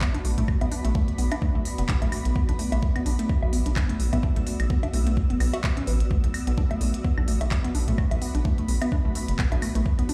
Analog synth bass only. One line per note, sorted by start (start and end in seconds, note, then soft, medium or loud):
0.25 0.33 B1 medium
0.38 0.44 B1 medium
0.61 0.68 B1 loud
0.85 0.91 B1 medium
1.18 1.26 B1 loud
1.55 1.61 B1 medium
1.78 1.85 F#1 medium
2.02 2.08 B1 loud
2.25 2.32 B1 medium
2.49 2.55 B1 loud
2.72 2.78 B1 medium
3.06 3.14 B1 loud
3.43 3.54 B1 medium
3.53 3.61 A1 medium
3.66 3.72 B1 loud
4.00 4.08 B1 medium
4.13 4.19 B1 loud
4.36 4.43 B1 loud
4.60 4.66 B1 medium
4.93 5.32 B1 loud
5.30 5.36 F#1 medium
5.40 5.48 B1 loud
5.87 6.03 A1 medium
6.24 6.30 B1 loud
6.47 6.53 B1 medium
6.81 6.89 B1 loud
7.18 7.29 B1 medium
7.28 7.36 A1 medium
7.41 7.47 B1 medium
7.75 7.83 B1 medium
7.88 7.94 B1 medium
8.11 8.18 B1 loud
8.35 8.41 B1 medium
8.68 8.76 B1 loud
9.05 9.11 B1 medium
9.28 9.35 F#1 medium
9.52 9.58 B1 loud
9.75 9.82 B1 medium
9.99 10.05 B1 loud